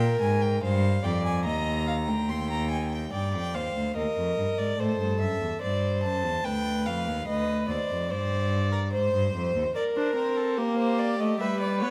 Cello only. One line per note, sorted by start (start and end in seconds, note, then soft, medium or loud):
0.00 0.21 A#2 loud
0.22 0.62 G#2 medium
0.63 1.03 G2 loud
1.04 1.47 F2 medium
1.45 2.10 D#2 medium
2.08 2.30 D2 medium
2.29 3.12 D#2 medium
3.13 3.36 G2 medium
3.34 3.56 F2 medium
3.55 3.75 D#2 medium
3.75 3.95 D2 medium
3.96 4.04 D#2 medium
4.17 4.37 F2 medium
4.37 4.45 G2 medium
4.58 4.78 G#2 medium
4.79 4.99 A2 medium
4.99 5.22 G2 medium
5.21 5.41 F#2 medium
5.42 5.50 E2 medium
5.62 6.05 G2 medium
6.04 6.26 F#2 medium
6.25 6.44 E2 medium
6.45 6.88 D2 medium
6.87 7.09 F2 medium
7.08 7.27 D#2 medium
7.28 7.68 D2 medium
7.69 7.77 D#2 medium
7.90 8.12 F2 medium
8.11 8.95 G2 medium
8.93 9.13 G#2 medium
9.14 9.34 G2 medium
9.35 9.54 F2 medium
9.55 9.63 D#2 medium